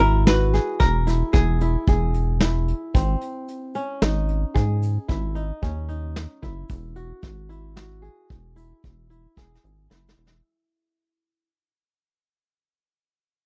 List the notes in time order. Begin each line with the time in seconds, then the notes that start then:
Already playing: G#1 F#4
0.00 E4 A#4, closed hi-hat, shaker
0.27 F#4 B4, snare, closed hi-hat
0.54 G#4, snare, closed hi-hat
0.80 E1 A#4, kick, snare, closed hi-hat
1.07 E4, snare, closed hi-hat, shaker
1.33 E1 G#4, kick, snare, closed hi-hat
1.61 E4, closed hi-hat, shaker
1.87 E1 G#4, kick, closed hi-hat, shaker
2.14 closed hi-hat, shaker
2.40 E4, snare, closed hi-hat
2.68 closed hi-hat
2.94 G#1 C4, kick, closed hi-hat, shaker
3.21 closed hi-hat, shaker
3.48 closed hi-hat, shaker
3.75 C#4, closed hi-hat, shaker
4.02 G#1 D#4, snare, closed hi-hat
4.29 closed hi-hat
4.54 G#2 G#4, kick, closed hi-hat
4.83 closed hi-hat, shaker
5.08 G#1 E4, kick, closed hi-hat
5.35 D#4, closed hi-hat, shaker
5.62 D#2 C#4, kick, closed hi-hat, shaker
5.89 D#4, closed hi-hat, shaker
6.16 snare, closed hi-hat
6.42 F#1 E4, kick, closed hi-hat
6.70 E1, kick, closed hi-hat, shaker
6.96 F#4, closed hi-hat, shaker
7.22 G#1, kick, snare, closed hi-hat
7.49 E4, closed hi-hat, shaker
7.76 F#4, snare, closed hi-hat
8.02 G#4, closed hi-hat
8.30 E1, kick, closed hi-hat
8.56 E4, closed hi-hat, shaker
8.84 E1, kick, closed hi-hat
9.10 E4, closed hi-hat, shaker
9.37 E1 G#4, kick, snare
9.55 snare
9.64 G#1, shaker
9.90 F#1 E4, snare
10.09 snare
10.18 E1
10.27 snare